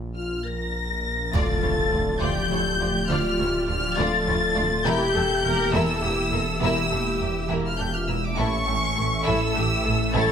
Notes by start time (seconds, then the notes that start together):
Already playing: A#1
0.15 F4 F6
0.44 A#4 A#6
1.33 D1 D2 F3 A3 F4 A4 D5 A6, impact
1.63 D2 E4 C#5
1.92 D2 F4 D5
2.20 D2 F4 G4 D5 G6
2.51 D2 E4 A4 C#5
2.80 D2 F4 G4 D5
3.09 D2 F4 D5 F6
3.39 D2 E4 C#5
3.68 D2 F4 D5 F6
3.97 D2 F4 A4 D5 A6
4.27 D2 E4 C#5
4.56 D2 F4 D5
4.86 E1 E2 E3 A#3 E4 G4 A#4 E5 G6
5.15 E1 E2 D4 A4
5.44 E1 E2 E4 A#4
5.74 E1 E2 E4 A4 A#4 E6
6.02 E1 E2 D4 G4 A4
6.32 E1 E2 E4 A4 A#4
6.62 E1 E2 E4 G4 A#4 E6
6.92 E1 E2 D4 A4
7.21 E1 E2 E4 A#4
7.50 E1 E2 E4 A#4
7.64 F4 F6
7.78 E1 E2 D4 G4 A4 G6
7.95 F4 F6
8.08 E1 E2 E4 A#4 E6
8.23 D4 D6
8.37 A1 A2 E3 A3 C#4 E4 A4 E5 C#6
8.66 A1 A2 D4 G4
8.96 A1 A2 E4 A4
9.24 A1 A2 E4 A4
9.28 A4 E6
9.54 A1 A2 D4 G4
9.84 A1 A2 E4 A4
10.14 A1 A2 E4 A4 C#5 A6